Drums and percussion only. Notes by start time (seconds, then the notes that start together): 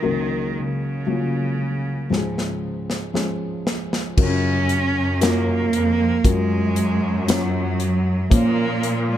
2.13 snare
2.38 snare
2.90 snare
3.15 snare
3.67 snare
3.93 snare
4.18 kick, crash
4.69 closed hi-hat
5.21 snare, closed hi-hat, tambourine
5.73 closed hi-hat
6.25 kick, closed hi-hat
6.76 closed hi-hat
7.28 snare, closed hi-hat, tambourine
7.80 closed hi-hat
8.31 kick, closed hi-hat
8.83 closed hi-hat